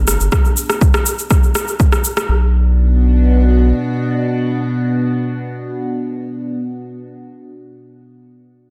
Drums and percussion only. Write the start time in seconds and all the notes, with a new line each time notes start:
0.08 cross-stick, shaker
0.20 shaker
0.32 kick, cross-stick, shaker
0.45 shaker
0.57 shaker
0.70 cross-stick, shaker
0.81 kick, shaker
0.94 cross-stick, shaker
1.06 shaker
1.19 shaker
1.31 kick, cross-stick, shaker
1.43 shaker
1.55 cross-stick, shaker
1.68 shaker
1.80 kick, shaker
1.92 cross-stick, shaker
2.04 shaker
2.17 cross-stick, shaker